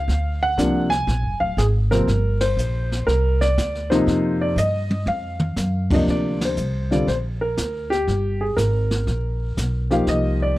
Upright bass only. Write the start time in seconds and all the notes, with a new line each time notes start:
0.08 D2
0.58 C2
1.07 A#1
1.23 F#1
1.41 D1
1.57 G#1
2.07 G1
2.57 A#1
3.07 C2
3.58 D2
4.07 F2
4.56 G2
5.06 F2
5.56 F#2
6.07 D2
6.57 C2
7.07 A#1
7.57 D2
8.07 G1
8.57 G#1
9.07 A#1
9.57 B1
10.07 C2